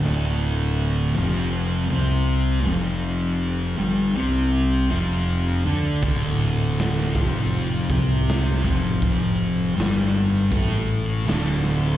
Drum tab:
HH |--------|--------|o-o-o-o-|o-o-o-o-|
SD |--------|--------|--o---o-|--o---o-|
BD |--------|--------|o--o-o-o|o---o---|